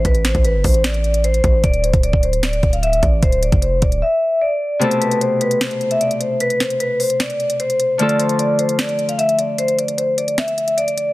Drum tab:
HH |xxxxx-oxxxxxxxx-|xxxxx-xxxxxxxxx-|xxxxx-xx--------|xxxxx-xxxxxxxxx-|
SD |--o-----o-------|--------o-------|----------------|--------o-------|
BD |o--o--o-------o-|o--o-o----o---o-|o--o--o---------|----------------|

HH |xxxxx-oxxxxxxxx-|xxxxx-xxxxxxxxx-|xxxxx-xxxxxxxxx-|
SD |--o-----o-------|--------o-------|--------o-------|
BD |----------------|----------------|----------------|